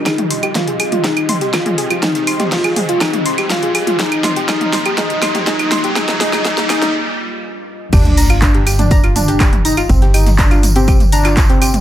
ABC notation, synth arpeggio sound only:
X:1
M:4/4
L:1/16
Q:1/4=122
K:Gphr
V:1 name="Synth arpeggio sound"
A z c' G z A A z A z c' G z A A z | A z c' G z A A z A z c' G z A A z | A z c' G A z c' G A z c' G A z c' G | A z A z A z A z8 z |
[Gg] z [bb'] [Ff] z [Gg] [Gg] z [bb'] [Ff] z [Gg] [Gg] z [bb'] [Ff] | z [Gg] [Gg] z [bb'] [Ff] z [Gg] [Gg] z [bb'] [Ff] z [Gg] [Gg] z |]